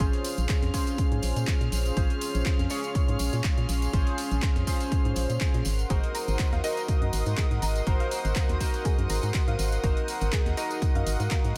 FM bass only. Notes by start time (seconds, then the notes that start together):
0.38 A#1
0.63 F2
1.12 G#2
1.23 A#1
1.36 A#2
1.61 A#2
1.72 A#1
1.97 A#1
2.35 A#1
2.59 F2
3.08 G#2
3.20 A#1
3.33 A#2
3.58 A#2
3.69 A#1
3.93 A#1
4.31 A#1
4.56 F2
5.05 G#2
5.16 A#1
5.30 A#2
5.54 A#2
5.66 G#1
5.90 G#1
6.28 G#1
6.53 D#2
7.02 F#2
7.13 G#1
7.26 G#2
7.51 G#2
7.62 G#1
7.87 G#1
8.25 G#1
8.49 D#2
8.99 F#2
9.10 G#1
9.23 G#2
9.48 G#2
9.59 G#1
9.84 G#1
10.21 G#1
10.46 D#2
10.95 F#2
11.06 G#1
11.20 G#2
11.44 G#2